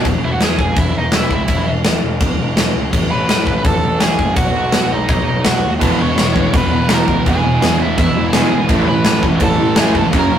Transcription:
0.05 picked electric bass E1, kick, crash
0.24 picked electric bass E1, lead electric guitar E4 E5
0.32 lead electric guitar F#4 F#5
0.41 picked electric bass E2, lead electric guitar G#4 G#5, snare, crash
0.59 picked electric bass E1, lead electric guitar G#4 G#5, kick
0.76 picked electric bass E1, lead electric guitar E4 E5, kick, crash
0.95 picked electric bass E1, lead electric guitar D#4 D#5
1.12 picked electric bass E1, lead electric guitar E4 E5, snare, crash
1.30 picked electric bass C#2, lead electric guitar E4, kick
1.35 lead electric guitar E5
1.48 picked electric bass E1, kick, crash
1.66 picked electric bass E1
1.84 picked electric bass E2, snare, crash
2.02 picked electric bass E1
2.20 picked electric bass E1, kick, crash
2.38 picked electric bass E1
2.57 picked electric bass E1, snare, crash
2.75 picked electric bass C#2
2.93 picked electric bass A1, kick, crash
3.11 picked electric bass A1, lead electric guitar B4 B5
3.28 picked electric bass A2, snare, crash
3.47 picked electric bass A1, kick
3.64 picked electric bass A1, lead electric guitar A4 A5, kick, crash
3.83 picked electric bass A1
4.00 picked electric bass A1, lead electric guitar G#4 G#5, snare, crash
4.19 picked electric bass F#1, kick
4.36 picked electric bass B1, lead electric guitar F#4 F#5, kick, crash
4.54 picked electric bass B1
4.72 picked electric bass B2, snare, crash
4.90 picked electric bass B1, lead electric guitar D#4 D#5
5.08 picked electric bass B1, lead electric guitar D#4 D#5, kick, crash
5.28 picked electric bass B1
5.45 picked electric bass B1, lead electric guitar F#4 F#5, snare, crash
5.63 picked electric bass D#2
5.81 picked electric bass E1, overdriven electric guitar E2 B2 E3, distorted electric guitar E3 G#3 B3 E4, kick, crash
6.00 picked electric bass E1, overdriven electric guitar E2 B2, lead electric guitar C#5 C#6
6.17 overdriven electric guitar E2 B2, picked electric bass E2, snare, crash
6.34 picked electric bass E1, overdriven electric guitar E2 B2, distorted electric guitar E3 G#3 B3 E4, kick
6.53 picked electric bass E1, overdriven electric guitar E2 B2, lead electric guitar B4 B5, kick, crash
6.70 picked electric bass E1, overdriven electric guitar E2 B2
6.88 picked electric bass E1, overdriven electric guitar E2 B2 E3, distorted electric guitar E3 G#3 B3 E4, snare, crash
6.93 lead electric guitar A#4 A#5
7.07 picked electric bass C#2, overdriven electric guitar E2 B2, kick
7.25 picked electric bass E1, overdriven electric guitar E2 B2, distorted electric guitar E3 G#3 B3, kick, crash
7.29 distorted electric guitar E4, lead electric guitar G#4 G#5
7.43 picked electric bass E1, overdriven electric guitar E2 B2
7.62 picked electric bass E2, overdriven electric guitar E2 B2, snare, crash
7.79 picked electric bass E1, overdriven electric guitar E2 B2, distorted electric guitar G#3 B3 E4, lead electric guitar E4 E5
7.83 distorted electric guitar E3
7.98 picked electric bass E1, overdriven electric guitar E2 B2, lead electric guitar E4 E5, kick, crash
8.15 picked electric bass E1, overdriven electric guitar E2 B2
8.33 picked electric bass E1, overdriven electric guitar E2 B2 E3, distorted electric guitar E3 G#3 B3, lead electric guitar G#4 G#5, snare, crash
8.38 distorted electric guitar E4
8.51 picked electric bass G#1, overdriven electric guitar E2 B2
8.69 picked electric bass A1, distorted electric guitar A2 E3 A3 C#4 E4, overdriven electric guitar A2 E3 A3, kick, crash
8.87 picked electric bass A1, overdriven electric guitar A2 E3, lead electric guitar B4 B5
9.04 picked electric bass A2, overdriven electric guitar A2 E3, snare, crash
9.22 picked electric bass A1, overdriven electric guitar A2 E3, distorted electric guitar E3 A3 C#4 E4, kick
9.27 distorted electric guitar A2
9.40 picked electric bass A1, overdriven electric guitar A2 E3, lead electric guitar A4, kick, crash
9.44 lead electric guitar A5
9.58 picked electric bass A1, overdriven electric guitar A2 E3
9.76 picked electric bass A1, overdriven electric guitar A2 E3 A3, distorted electric guitar A2 E3 A3 C#4, lead electric guitar G#4, snare, crash
9.80 distorted electric guitar E4, lead electric guitar G#5
9.95 picked electric bass F#1, overdriven electric guitar A2 E3, lead electric guitar A4 A5, kick
10.12 picked electric bass F#1, overdriven electric guitar F#2 C#3 F#3, distorted electric guitar F#3 A#3 C#4, kick, crash
10.16 distorted electric guitar F#4, lead electric guitar A#4 A#5
10.30 picked electric bass F#1, overdriven electric guitar F#2 C#3

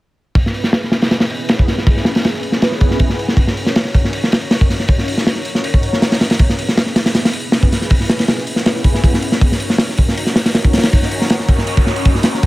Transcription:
0.35 analog synth pad B3 C#4 E4 G#4 B4, kick, open hi-hat
0.46 snare
0.54 open hi-hat
0.64 snare
0.73 snare, open hi-hat
0.84 snare
0.92 analog synth pad B3 C#4 E4 G#4 B4, snare, open hi-hat
1.02 snare, open hi-hat
1.11 snare, open hi-hat
1.20 snare, open hi-hat
1.29 analog synth pad B3 C#4 E4 G#4 B4, open hi-hat
1.49 snare, open hi-hat
1.59 kick
1.68 snare, open hi-hat
1.78 snare
1.86 analog synth pad B3 C#4 E4 G#4 B4, kick, open hi-hat
1.97 snare
2.05 snare, open hi-hat
2.15 snare, open hi-hat
2.25 snare, open hi-hat
2.34 snare
2.43 analog synth pad B3 C#4 E4 G#4 B4, open hi-hat
2.52 snare
2.62 snare, open hi-hat
2.72 snare
2.81 kick, open hi-hat
2.91 snare
2.99 kick, open hi-hat
3.10 snare
3.19 open hi-hat
3.28 snare
3.37 analog synth pad C#4 D#4 F#4 A#4 C#5, kick, open hi-hat
3.47 snare
3.57 open hi-hat
3.66 snare
3.76 snare, open hi-hat
3.85 snare
3.94 analog synth pad C#4 D#4 F#4 A#4 C#5, kick, open hi-hat
4.04 snare
4.13 open hi-hat
4.24 snare
4.32 analog synth pad C#4 D#4 F#4 A#4 C#5, snare, open hi-hat
4.51 snare, open hi-hat
4.61 kick
4.70 snare, open hi-hat
4.79 snare
4.88 analog synth pad C#4 D#4 F#4 A#4 C#5, kick, open hi-hat
4.98 snare
5.08 open hi-hat
5.18 snare
5.27 snare, open hi-hat
5.36 snare
5.45 analog synth pad C#4 D#4 F#4 A#4 C#5, open hi-hat
5.55 snare
5.64 open hi-hat
5.74 kick
5.83 open hi-hat
5.93 snare
6.02 snare, open hi-hat
6.12 snare, open hi-hat
6.21 snare, open hi-hat
6.30 snare, open hi-hat
6.39 analog synth pad B3 C#4 E4 G#4 B4, kick, open hi-hat
6.49 snare
6.59 open hi-hat
6.69 snare
6.77 snare, open hi-hat
6.86 snare
6.96 analog synth pad B3 C#4 E4 G#4 B4, snare, open hi-hat
7.06 snare, open hi-hat
7.15 snare, open hi-hat
7.25 snare, open hi-hat
7.33 analog synth pad B3 C#4 E4 G#4 B4, open hi-hat
7.52 snare, open hi-hat
7.63 kick
7.72 snare, open hi-hat
7.82 snare
7.90 analog synth pad B3 C#4 E4 G#4 B4, kick, open hi-hat
8.00 snare
8.10 snare, open hi-hat
8.19 snare, open hi-hat
8.28 snare, open hi-hat
8.38 snare
8.47 analog synth pad B3 C#4 E4 G#4 B4, open hi-hat
8.56 snare
8.66 snare, open hi-hat
8.76 snare
8.84 kick, open hi-hat
8.94 snare
9.04 kick, open hi-hat
9.14 snare
9.22 open hi-hat
9.32 snare
9.41 analog synth pad C#4 D#4 F#4 A#4 C#5, kick, open hi-hat
9.52 snare
9.60 open hi-hat
9.70 snare
9.78 snare, open hi-hat
9.89 snare
9.97 analog synth pad C#4 D#4 F#4 A#4 C#5, kick, open hi-hat
10.08 snare
10.18 open hi-hat
10.27 snare
10.35 analog synth pad C#4 D#4 F#4 A#4 C#5, snare, open hi-hat
10.46 snare, open hi-hat
10.55 snare, open hi-hat
10.65 kick
10.73 snare, open hi-hat
10.78 snare, open hi-hat
10.83 snare, open hi-hat
10.92 analog synth pad C#4 D#4 F#4 A#4 C#5, kick, open hi-hat, noise sweep
11.03 snare
11.11 open hi-hat
11.21 snare
11.30 snare, open hi-hat
11.40 snare
11.49 analog synth pad C#4 D#4 F#4 A#4 C#5, kick, open hi-hat
11.58 snare
11.67 open hi-hat
11.77 kick, open hi-hat
11.86 analog synth pad C#4 D#4 F#4 A#4 C#5, snare
11.96 open hi-hat
12.05 kick, open hi-hat
12.15 snare
12.23 analog synth pad C#4 D#4 F#4 A#4 C#5, snare, open hi-hat
12.34 snare
12.43 analog synth pad B3 C#4 E4 G#4 B4, kick, open hi-hat

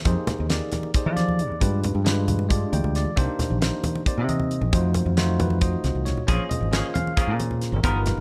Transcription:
0.05 fingered electric bass F2, tine electric piano A#3 D#4 G4 G#4 C5, kick, closed hi-hat, muted conga
0.27 muted fingered electric bass stroke, snare, closed hi-hat, low conga
0.39 fingered electric bass D#2, high conga
0.49 tine electric piano A#3 D#4 G4 G#4 A#4 D5, snare, closed hi-hat
0.72 snare, closed hi-hat, high conga, low conga
0.83 muted conga
0.94 tine electric piano A#3 D#4 G4 G#4 C5 D5, muted fingered electric bass stroke, kick, closed hi-hat
1.06 fingered electric bass F3
1.17 tine electric piano D5, snare, closed hi-hat, high conga
1.28 low conga
1.39 closed hi-hat, low conga
1.50 fingered electric bass D#2, high conga, low conga
1.60 fingered electric bass G2, tine electric piano G#3 D4 F4 G4 B4, kick, closed hi-hat, muted conga
1.83 closed hi-hat, low conga
1.95 fingered electric bass G2, high conga
2.05 tine electric piano G#3 D4 F4 G4 B4, snare, closed hi-hat
2.28 closed hi-hat, high conga, low conga
2.39 muted conga
2.49 tine electric piano G#3 D4 F4 G4 D5, kick, closed hi-hat
2.72 fingered electric bass D2, tine electric piano G5, closed hi-hat, high conga
2.84 fingered electric bass D2, low conga
2.95 tine electric piano D5, snare, closed hi-hat, low conga
3.05 muted fingered electric bass stroke, high conga, low conga
3.16 fingered electric bass C2, tine electric piano A#3 D4 D#4 G4 C5, kick, closed hi-hat, muted conga
3.39 muted fingered electric bass stroke, snare, closed hi-hat, low conga
3.50 fingered electric bass A#1, high conga
3.61 tine electric piano A#3 D4 D#4 G4 C5, snare, closed hi-hat
3.84 closed hi-hat, high conga, low conga
3.95 muted conga
4.06 tine electric piano A#3 C4 D#4 G4 C5 D5, muted fingered electric bass stroke, kick, closed hi-hat
4.18 fingered electric bass C3
4.29 tine electric piano D#5, closed hi-hat, high conga
4.40 low conga
4.51 closed hi-hat
4.61 fingered electric bass A#1, high conga, low conga
4.73 fingered electric bass F2, tine electric piano A3 D#4 F4 F#4 C5, kick, closed hi-hat, muted conga
4.94 closed hi-hat, low conga
5.06 fingered electric bass F2, high conga, low conga
5.17 tine electric piano A3 D#4 F4 F#4 C5, snare, closed hi-hat
5.40 tine electric piano B4, closed hi-hat, high conga, low conga
5.50 muted conga, low conga
5.61 tine electric piano A3 D#4 F4 F#4 C5 D#5, kick, closed hi-hat
5.73 high conga
5.84 fingered electric bass C2, snare, closed hi-hat, high conga
5.95 fingered electric bass C2, high conga
6.05 tine electric piano C#5, snare, closed hi-hat, low conga
6.17 muted fingered electric bass stroke, low conga
6.27 fingered electric bass A#1, clean electric guitar F3 A#3 C#4 G#4, tine electric piano A#3 C#4 F4 G#4 C5, kick, closed hi-hat, muted conga
6.50 tine electric piano D#5, muted fingered electric bass stroke, closed hi-hat, low conga
6.61 fingered electric bass G#1, high conga
6.71 clean electric guitar F3 A#3 C#4 G#4, tine electric piano A#3 C#4 F4 G#4 C5, snare, closed hi-hat
6.94 tine electric piano F5, closed hi-hat, high conga, low conga
7.07 muted conga
7.16 clean electric guitar F3 A#3 C#4 G#4, tine electric piano A#3 C#4 F4 G#4 C5, kick, closed hi-hat
7.27 fingered electric bass A#2
7.40 closed hi-hat, high conga
7.51 low conga
7.61 snare, closed hi-hat, low conga
7.72 fingered electric bass G#1, tine electric piano A#4, high conga, low conga
7.83 fingered electric bass G1, clean electric guitar F3 B3 D#4 A#4, tine electric piano B3 D#4 F4 G4 A#4, kick, closed hi-hat, muted conga
7.96 tine electric piano B4
8.06 snare, closed hi-hat, low conga
8.17 fingered electric bass G1

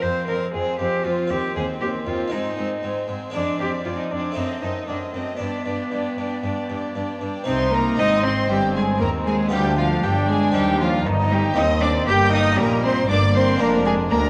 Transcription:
Already playing: harpsichord G#3 C4 F4
0.02 harpsichord F2, cello section F2, viola section C4, cello C5, violin section C5 F5
0.28 harpsichord F2, cello section F2, viola section C4, cello A#4, violin section C5 F5
0.54 cello section F2, harpsichord F2, viola section C4, cello G#4, violin section C5 F5
0.79 harpsichord F2, cello section F2, viola section C4, cello G4, violin section C5 F5
1.05 harpsichord F2, cello section F2, viola section C4, cello F4, violin section C5 F5
1.28 harpsichord D#2 C4, cello section D#2, viola section C4, cello G4
1.32 violin section C5 G5
1.56 harpsichord D#2, cello section D#2, viola section C4, cello G#4, violin section C5 G5
1.81 harpsichord D#2, cello section D#2, viola section C4, cello G4, violin section C5 G5
2.07 harpsichord D#2, cello section D#2, viola section C4, cello F4, violin section C5 G5
2.28 harpsichord G#3 C4, cello D#4
2.33 harpsichord G#2, cello section G#2, viola section C4, violin section C5 G#5
2.58 harpsichord G#2, cello section G#2, viola section C4, violin section C5 G#5
2.83 harpsichord G#2, cello section G#2, viola section C4, violin section C5 G#5
3.08 harpsichord G#2, cello section G#2, viola section C4, violin section C5 G#5
3.30 harpsichord G#3 C4 D4
3.34 harpsichord F2, cello section F2, viola section C4, cello D4, violin section D5 G#5
3.59 harpsichord F2, cello section F2, viola section C4, cello G4, violin section D5 G#5
3.85 harpsichord F2, cello section F2, viola section C4, cello F4, violin section D5 G#5
3.98 cello D#4
4.11 harpsichord F2, cello section F2, viola section C4, cello D4, violin section D5 G#5
4.32 harpsichord A3 C4 D#4
4.36 cello section F#2, harpsichord F#2, viola section C4, cello C4, violin section D#5 A5
4.62 harpsichord F#2, cello section F#2, viola section C4, cello D#4, violin section D#5 A5
4.88 cello section F#2, harpsichord F#2, viola section C4, cello D4, violin section D#5 A5
5.14 cello section F#2, harpsichord F#2, viola section C4, cello C4, violin section D#5 A5
5.37 cello section G2, harpsichord G2 D4, cello B3, viola section D4, violin section D5
5.41 violin section G5
5.66 harpsichord G2, cello section G2, viola section D4, violin section D5 G5
5.91 cello section G2, harpsichord G2, viola section D4, violin section D5 G5
6.17 cello section G2, harpsichord G2, viola section D4, violin section D5 G5
6.43 cello section G2, harpsichord G2, viola section D4, violin section D5 G5
6.69 cello section G2, harpsichord G2, viola section D4, violin section D5 G5
6.95 cello section G2, harpsichord G2, viola section D4, violin section D5 G5
7.21 cello section G2, harpsichord G2, viola section D4, violin section D5 G5
7.44 double bass section C2, cello section C3, harpsichord C3 C4 D#4, cello C4, viola section D#4, violin section C5 C6
7.72 cello A#3, violin section A#4 A#5
7.97 double bass section G#1, cello section G#2, harpsichord G#2, viola section C4, cello D#4, violin section D#5 D#6
8.23 cello C4, violin section C5 C6
8.49 double bass section G1, cello section G2, harpsichord G2, cello G3, viola section C4, violin section G4 G5
8.74 cello G#3, violin section G#4 G#5
8.99 cello section D#2, double bass section D#2, harpsichord D#2, cello A#3, violin section A#4 A#5
9.25 cello G#3, violin section G#4 G#5
9.49 harpsichord D2 B3 F4, cello section D2, double bass section D2, cello G3, viola section D4, violin section G4 G5
9.77 cello F3, violin section F4 F5
10.03 double bass section G1, cello section G2, harpsichord G2, cello G3, violin section G4 G5
10.28 cello G#3, violin section G#4 G#5
10.52 harpsichord D#2 C4 D#4, cello section D#2, double bass section D#2, cello G3, violin section G4 G5
10.79 cello F3, violin section F4 F5
11.05 double bass section G1, cello section G2, harpsichord G2, cello D#3, viola section D#4, violin section D#4 D#5
11.30 cello G3, violin section G4 G5
11.54 cello section D#2, harpsichord D#2 A#3 D#4, double bass section D#2, viola section C4, cello D#4, violin section D#5 D#6
11.81 cello D4, violin section D5 D6
12.07 double bass section G1, cello section G2, harpsichord G2, viola section A#3, cello G4, violin section G5 G6
12.33 cello D#4, violin section D#5 D#6
12.58 double bass section A#1, cello section A#2, harpsichord A#2, viola section G3, cello A#3, violin section A#4 A#5
12.84 cello C4, violin section C5 C6
13.09 double bass section G1, cello section G2, harpsichord G2, viola section A#3, cello D4, violin section D5 D6
13.35 cello C4, violin section C5 C6
13.56 harpsichord G#3 A#3 D4, viola section D4, violin section A#5
13.60 double bass section F1, harpsichord F2, cello section F2, cello A#3, violin section A#4
13.85 cello G#3, violin section G#4 G#5
14.11 double bass section D2, harpsichord D2, cello section D2, cello A#3, viola section D4, violin section A#4 A#5

